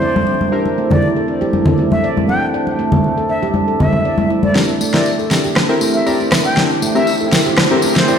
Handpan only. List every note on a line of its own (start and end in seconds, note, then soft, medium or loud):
0.02 0.14 D5 medium
0.15 0.27 E4 medium
0.27 0.34 D4 medium
0.53 0.60 D4 loud
0.78 0.90 A3 medium
1.16 1.27 A4 medium
1.28 1.35 D4 medium
1.41 1.48 G4 medium
1.53 1.65 D4 medium
1.66 1.77 A4 medium
1.79 1.91 A3 medium
2.04 2.16 D5 loud
2.17 2.28 E4 medium
2.29 2.36 D4 medium
2.54 2.61 D4 loud
2.79 2.92 A3 medium
3.18 3.28 A4 medium
3.30 3.37 D4 medium
3.42 3.49 G4 medium
3.55 3.67 D4 medium
3.68 3.79 A4 medium
3.80 3.92 E4 medium
4.05 4.18 D5 medium
4.18 4.29 A3 medium
4.30 4.42 E4 medium
4.56 4.63 D4 medium
4.81 4.93 A3 medium
5.19 5.30 A4 medium
5.31 5.38 D4 medium
5.45 5.51 G4 medium
5.56 5.68 D4 medium
5.69 5.80 A4 medium
5.82 5.94 A3 medium
6.07 6.19 D5 medium
6.20 6.31 E4 medium
6.32 6.39 D4 medium
6.57 6.64 D4 loud
6.82 6.95 A3 loud
7.21 7.32 A4 medium
7.33 7.40 D4 medium
7.46 7.53 G4 medium
7.58 7.70 D4 medium
7.71 7.82 A4 medium
7.83 7.96 A3 medium
8.09 8.19 D5 loud